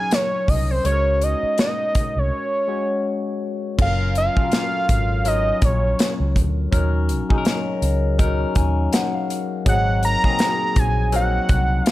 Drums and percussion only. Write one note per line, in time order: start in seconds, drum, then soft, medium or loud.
0.11 snare loud
0.11 closed hi-hat medium
0.48 kick medium
0.48 open hi-hat medium
0.85 closed hi-hat medium
1.21 closed hi-hat medium
1.58 snare loud
1.58 closed hi-hat medium
1.95 kick medium
1.95 closed hi-hat medium
3.79 kick loud
3.79 crash medium
4.15 closed hi-hat medium
4.37 kick medium
4.52 snare loud
4.52 closed hi-hat medium
4.89 kick medium
4.89 closed hi-hat medium
5.25 closed hi-hat medium
5.62 kick medium
5.62 closed hi-hat medium
5.99 snare loud
5.99 closed hi-hat loud
6.36 kick medium
6.36 closed hi-hat medium
6.72 kick loud
6.72 closed hi-hat medium
7.09 closed hi-hat medium
7.30 kick medium
7.45 snare loud
7.45 closed hi-hat medium
7.82 closed hi-hat medium
8.19 kick medium
8.19 closed hi-hat medium
8.55 kick medium
8.55 closed hi-hat medium
8.93 snare loud
8.93 closed hi-hat loud
9.30 closed hi-hat medium
9.66 kick loud
9.66 closed hi-hat medium
10.03 closed hi-hat medium
10.24 kick medium
10.39 snare loud
10.39 closed hi-hat medium
10.76 kick medium
10.76 closed hi-hat medium
11.12 closed hi-hat medium
11.49 kick medium
11.49 closed hi-hat medium
11.86 snare loud
11.86 closed hi-hat loud